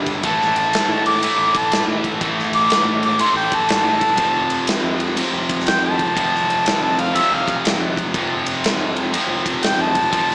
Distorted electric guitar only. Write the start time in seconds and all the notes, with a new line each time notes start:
Already playing: G2 D3 G3
0.23 A2 E3 A3
1.22 A2 E3 A3
2.20 A2 E3 A3
3.18 A2 E3 A3
4.17 F2 C3 F3
5.17 F2 C3 F3
6.15 F2 C3 F3
7.14 F2 C3 F3
8.14 F2 C3 F3
9.12 F2 C3 F3
10.11 F2 C3 F3